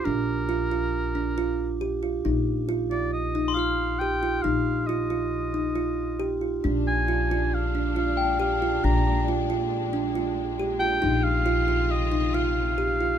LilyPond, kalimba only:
\new Staff \with { instrumentName = "Kalimba" } { \time 5/4 \key bes \mixolydian \tempo 4 = 137 d'4 f'8 f'4 d'8 f'4 g'8 f'8 | ees'4 f'8 f'4 ees'8 f'4 g'8 f'8 | ees'4 f'8 f'4 ees'8 f'4 g'8 f'8 | d'4 f'8 f'4 d'8 f'4 g'8 f'8 |
d'4 f'8 f'4 d'8 f'4 g'8 f'8 | ees'4 f'8 f'4 ees'8 f'4 g'8 f'8 | }